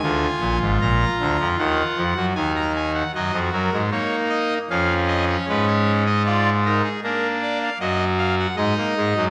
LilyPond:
<<
  \new Staff \with { instrumentName = "Pipe organ" } { \time 4/4 \key dis \phrygian \tempo 4 = 77 << { gis''4 ais''4 fis''4 gis''16 ais''16 gis''16 fis''16 | \key ees \minor ees''8 bes'8 des''8 ees''8 f''8 ees''16 des''16 ces''16 des''8 ees''16 | d''8 bes'16 aes'16 bes'8 d''16 f''16 ees''8 f''16 ges''16 ees''4 | } \\ { eis'2. dis'4 | ges'4 ees'4 des'2 | f'8 ees'8 d'4 ges'4 ees'4 | } >> }
  \new Staff \with { instrumentName = "Pipe organ" } { \clef bass \time 4/4 \key dis \phrygian <d, d>8 <ais,, ais,>16 <gis,, gis,>16 <ais,, ais,>8 <d, d>16 <eis, eis>16 <dis, dis>8 <eis, eis>16 <fis, fis>16 <dis, dis>4 | \key ees \minor <ges, ges>16 <f, f>16 <ges, ges>16 <aes, aes>16 bes4 <f, f>4 <aes, aes>4~ | <aes, aes>4 bes4 <ges, ges>4 <aes, aes>16 bes16 <aes, aes>16 <ges, ges>16 | }
>>